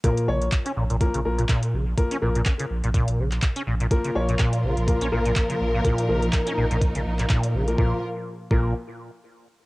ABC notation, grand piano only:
X:1
M:4/4
L:1/16
Q:"Swing 16ths" 1/4=124
K:Bbm
V:1 name="Grand piano"
[F,B,B]2 [F,B,d] z4 z [F,B,B] z [F,B,B] z4 z | [F,B,B] z [F,B,B] z12 z | [F,B,B]2 [F,B,d] z4 z [F,B,B] z [F,B,B] z4 z | [F,B,B] z [F,B,B] z12 [F,B,B] |
[F,B,B] z4 z [F,B,B]2 z8 |]